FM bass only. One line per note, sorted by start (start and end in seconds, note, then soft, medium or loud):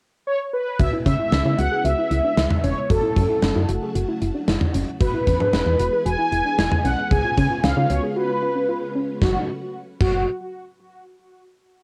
0.80 0.89 C#2 loud
1.06 1.15 C#3 medium
1.32 1.42 C#2 loud
1.45 1.55 C#3 medium
1.58 1.68 C#2 loud
1.85 1.94 C#2 loud
2.11 2.20 C#2 loud
2.37 2.47 C#2 medium
2.64 2.73 E1 loud
2.90 3.00 F#1 loud
3.17 3.26 F#2 loud
3.42 3.52 F#1 loud
3.56 3.65 F#2 loud
3.69 3.78 F#1 loud
3.95 4.05 F#1 loud
4.22 4.31 F#1 loud
4.48 4.57 F#1 loud
4.74 4.84 F#1 medium
5.01 5.10 E1 loud
5.27 5.36 E2 medium
5.53 5.63 E1 medium
5.66 5.76 E2 loud
5.79 5.89 E1 loud
6.06 6.15 E1 loud
6.32 6.42 E1 medium
6.58 6.68 E1 loud
6.85 6.94 B1 medium
7.11 7.21 C#2 loud
7.38 7.47 C#3 medium
7.64 7.73 C#2 medium
7.77 7.86 C#3 loud
7.90 8.00 C#2 medium
9.22 9.36 F#1 loud
10.01 10.25 F#1 loud